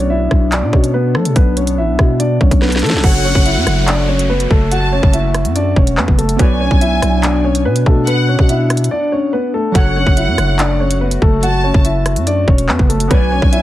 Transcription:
Already playing: B1 B3 D4 F#4 C#5 D5
0.10 E4 E5
0.31 B1, kick, cross-stick
0.52 D4 D5, clap, closed hi-hat
0.63 B2
0.73 B2 C#4 C#5, kick
0.84 closed hi-hat
0.94 B3 B4
1.15 F#3 A3 A4, cross-stick
1.25 B2, closed hi-hat
1.36 B1 B3 B4, kick, closed hi-hat
1.57 C#4 C#5, closed hi-hat
1.67 closed hi-hat
1.78 A1 E4 E5
1.88 B1
1.99 B2, kick, cross-stick
2.20 D4 D5, closed hi-hat
2.41 B1 C#4 C#5, kick
2.51 B1, kick, closed hi-hat
2.62 B3 B4, snare
2.69 snare, closed hi-hat
2.76 snare, closed hi-hat
2.83 F#3 A3 A4, snare, closed hi-hat
2.90 B1, snare
2.97 F#3, snare
3.02 F#1 A3 F#4 A4 F#5, kick, closed hi-hat, downlifter
3.07 C#5
3.25 C#4 C#5
3.35 F#1, kick
3.46 E4 E5, closed hi-hat
3.56 F#2
3.67 F#1, cross-stick, closed hi-hat
3.88 D4 D5, clap, closed hi-hat
4.08 C#4 C#5
4.19 closed hi-hat
4.30 B3 B4
4.40 closed hi-hat
4.51 F#1 A3 A4, kick
4.71 F#4 F#5 A5, closed hi-hat
4.92 C#4 C#5
5.03 F#1, kick
5.13 E4 E5, closed hi-hat
5.34 cross-stick, closed hi-hat
5.45 F#2, closed hi-hat
5.56 D4 D5, closed hi-hat
5.76 E1 C#4 C#5, kick
5.87 closed hi-hat
5.97 F#2 B3 B4, clap
6.08 F#1, kick
6.18 A3 A4, closed hi-hat
6.29 closed hi-hat
6.36 B1 B3 D4 F#4 B4 G#5, kick, closed hi-hat
6.41 C#5 D5
6.61 C#4 C#5
6.71 B1, kick
6.81 E4 E5, closed hi-hat
7.02 B1, cross-stick, closed hi-hat
7.23 D4 D5, clap, closed hi-hat
7.44 C#4 C#5
7.55 closed hi-hat
7.65 B2 B3 B4
7.76 closed hi-hat
7.86 B2 A3 A4, kick
8.07 B3 B4 F#5, closed hi-hat
8.29 C#4 C#5
8.39 B2, kick
8.49 E4 E5, closed hi-hat
8.70 cross-stick, closed hi-hat
8.77 closed hi-hat
8.84 closed hi-hat
8.91 D4 D5
9.12 C#4 C#5
9.33 B3 B4
9.54 A3 A4
9.72 F#1 F#3 A3 F#4 F#5, kick, closed hi-hat
9.76 F#4 A4 C#5
9.96 C#4 C#5
10.07 F#1, kick
10.17 E4 E5, closed hi-hat
10.28 F#2
10.38 F#1, cross-stick, closed hi-hat
10.59 D4 D5, clap, closed hi-hat
10.80 C#4 C#5
10.91 closed hi-hat
11.01 B3 B4
11.11 closed hi-hat
11.22 F#1 A3 A4, kick
11.43 F#4 F#5 A5, closed hi-hat
11.64 C#4 C#5
11.74 F#1, kick
11.85 E4 E5, closed hi-hat
12.06 cross-stick, closed hi-hat
12.16 F#2, closed hi-hat
12.27 D4 D5, closed hi-hat
12.48 E1 C#4 C#5, kick
12.58 closed hi-hat
12.69 F#2 B3 B4, clap
12.79 F#1, kick
12.89 A3 A4, closed hi-hat
13.00 closed hi-hat
13.08 B1 D3 B3 D4 F#4 B4 G#5, kick, closed hi-hat
13.12 C#5 D5
13.31 C#4 C#5
13.42 B1, kick
13.52 E4 E5, closed hi-hat

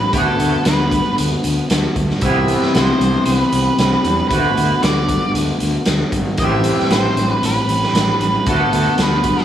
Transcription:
Already playing: A2 E3 G3 C4 G4 B4
0.13 D2 D3 A3 B3 F#4 A4, kick, closed hi-hat
0.40 D2, closed hi-hat
0.65 D2 B4, snare, closed hi-hat
0.91 kick, closed hi-hat
1.18 D2, closed hi-hat
1.44 D2, closed hi-hat
1.70 D2, snare, closed hi-hat
1.96 D2, kick, closed hi-hat
2.10 snare
2.21 C2 C3 E3 G3 B3 E4 E5, kick, closed hi-hat
2.48 closed hi-hat
2.62 snare
2.74 C2 C5, snare, closed hi-hat
3.00 C2, closed hi-hat
3.25 C2 C5, closed hi-hat
3.36 B4
3.52 C2, closed hi-hat
3.78 C2, snare, closed hi-hat
4.04 E2, closed hi-hat
4.29 D2 D3 A3 B3 B4, kick, closed hi-hat
4.33 F#4
4.56 D2, closed hi-hat
4.82 D2 D5, snare, closed hi-hat
5.09 kick, closed hi-hat
5.34 D2, closed hi-hat
5.60 D2, closed hi-hat
5.85 D2, snare, closed hi-hat
6.12 G#1, kick, closed hi-hat
6.37 A1 A2 E3 G3 E5, kick, closed hi-hat
6.42 C4 G4
6.64 closed hi-hat
6.79 snare
6.90 A1 C5, snare, closed hi-hat
7.16 A1, closed hi-hat
7.31 B4
7.42 A1 B4, closed hi-hat
7.67 A1, closed hi-hat
7.83 snare
7.93 A1, snare, closed hi-hat
8.20 A1, closed hi-hat
8.46 D2 D3 A3 B3 F#4 A4, kick, closed hi-hat
8.72 D2, closed hi-hat
8.98 D2, snare, closed hi-hat
9.02 B4
9.24 kick, closed hi-hat
9.38 snare

